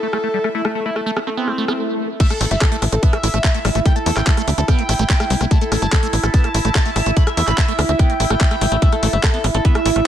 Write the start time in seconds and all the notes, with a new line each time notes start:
Already playing: E4 A4 E5
0.03 A3
0.13 A3, cross-stick
0.24 A3
0.34 G3
0.44 A3, cross-stick
0.55 A3 E4
0.65 A3, cross-stick
0.75 A3
0.86 A3 E4
0.96 A3, cross-stick
1.06 A3
1.17 B3, cross-stick
1.27 A3 C4
1.37 B3 C4, swell
1.48 A3, cross-stick
1.58 A3
1.68 B3, cross-stick
2.20 A3 E4 E5, kick, closed hi-hat, crash
2.30 A3 A4, cross-stick, closed hi-hat
2.41 A1 A3 A4, open hi-hat
2.51 G1 A3 E5, closed hi-hat
2.61 A3 A4, kick, cross-stick, clap, closed hi-hat
2.72 A3 A4, closed hi-hat
2.82 A1 B3, cross-stick, open hi-hat
2.92 A1 C4 A4, closed hi-hat
3.03 B3 E5, kick, closed hi-hat
3.13 A3, cross-stick, closed hi-hat
3.23 A1 E4, open hi-hat
3.34 A1 A3, cross-stick, closed hi-hat
3.44 A3, kick, clap, closed hi-hat
3.54 A3, closed hi-hat
3.65 A1 G3, cross-stick, open hi-hat
3.75 A1 A3, closed hi-hat
3.86 A3 G5, kick, cross-stick, closed hi-hat
3.96 A3 A4, closed hi-hat
4.06 E2 A3 A4, open hi-hat
4.17 A1 A3 G5, cross-stick, clap, closed hi-hat
4.27 A3 A4, kick, clap, closed hi-hat
4.37 A3 A4, cross-stick, closed hi-hat
4.48 D2 B3, open hi-hat
4.58 D2 C4 A4, closed hi-hat
4.68 B3 G5, kick, cross-stick, closed hi-hat
4.79 A3, closed hi-hat
4.89 A1 E4, cross-stick, open hi-hat
4.99 A1 A3, closed hi-hat
5.10 A3, kick, clap, closed hi-hat
5.20 A3, cross-stick, closed hi-hat
5.30 C2 G3, open hi-hat
5.41 C2 A3, cross-stick, closed hi-hat
5.51 A3 A5, kick, closed hi-hat
5.61 A3 A4, closed hi-hat
5.72 A1 A3 A4, cross-stick, open hi-hat
5.82 G1 A3 A5, closed hi-hat
5.92 A3 A4, kick, cross-stick, clap, closed hi-hat
6.03 A3 A4, closed hi-hat
6.13 A1 B3, open hi-hat
6.23 A1 C4 A4, cross-stick, closed hi-hat
6.34 B3 A5, kick, closed hi-hat
6.44 A3, cross-stick, closed hi-hat
6.54 A1 E4, open hi-hat
6.65 A1 A3, closed hi-hat
6.75 A3, kick, cross-stick, clap, closed hi-hat
6.86 A3, closed hi-hat
6.96 A1 G3, cross-stick, open hi-hat
7.06 A1 A3, closed hi-hat
7.17 A3 B5, kick, closed hi-hat
7.27 A3 E5, cross-stick, closed hi-hat
7.37 E2 A3 E5, open hi-hat
7.48 A1 A3 B5, cross-stick, clap, closed hi-hat
7.58 A3 E5, kick, clap, closed hi-hat
7.68 A3 E5, closed hi-hat
7.79 D2 B3, cross-stick, open hi-hat
7.89 D2 C4 E5, closed hi-hat
7.99 B3 G5, kick, cross-stick, closed hi-hat
8.10 A3, closed hi-hat
8.20 A1 E4, open hi-hat
8.30 A1 A3, cross-stick, closed hi-hat
8.41 A3, kick, clap, closed hi-hat
8.51 A3, cross-stick, closed hi-hat
8.61 A1 G3, open hi-hat
8.72 A1 A3, closed hi-hat
8.82 A3 E5, kick, closed hi-hat
8.92 A3 A4, cross-stick, closed hi-hat
9.03 A1 A3 A4, open hi-hat
9.13 G1 A3 E5, closed hi-hat
9.23 A3 A4, kick, cross-stick, clap, closed hi-hat
9.34 B3 A4, closed hi-hat
9.44 A1 B3, cross-stick, open hi-hat
9.54 A1 C4 A4, closed hi-hat
9.65 B3 E5, kick, closed hi-hat
9.75 A3, cross-stick, closed hi-hat
9.86 A1 E4, open hi-hat
9.96 A1 A3, cross-stick, closed hi-hat